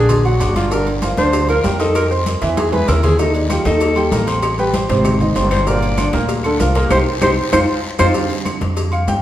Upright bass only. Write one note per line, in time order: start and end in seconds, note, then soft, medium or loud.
0.00 0.37 A#1 loud
0.41 1.13 G1 loud
1.18 1.61 D2 loud
1.65 2.36 F2 loud
2.42 2.85 E2 loud
2.88 3.60 D#2 loud
3.65 4.09 D#2 loud
4.12 4.84 A1 loud
4.89 5.33 G#1 loud
5.36 6.08 G1 loud
6.13 6.57 D2 loud
6.60 6.89 C2 loud
6.90 7.02 C2 loud
7.22 7.33 C2 loud
7.53 7.64 F2 loud
7.99 8.11 F2 loud
8.62 9.05 F2 loud
9.08 9.22 G2 loud